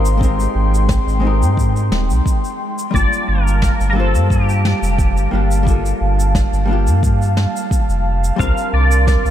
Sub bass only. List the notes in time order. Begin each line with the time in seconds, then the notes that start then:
Already playing: G#1
0.55 G#1
1.07 G#1
1.41 G#2
1.92 D#1
2.10 C2
2.94 G1
3.28 G1
3.80 G1
4.14 G2
4.82 F1
5.16 G1
5.33 G1
6.01 G1
6.53 G1
6.87 G2
7.89 F1
8.39 C2
8.73 C2
9.25 C2